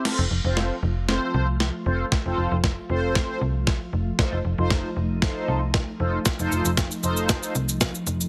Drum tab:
CC |x---------------|----------------|----------------|----------------|
SH |----------------|----------------|----------------|xxxxxxxxxxxxxxxx|
SD |o---o---o---o---|o---o---o---o---|o---o---o---o---|o---o---o---o---|
BD |----------------|o---o---o---o---|o---o---o---o---|o---o---o---o---|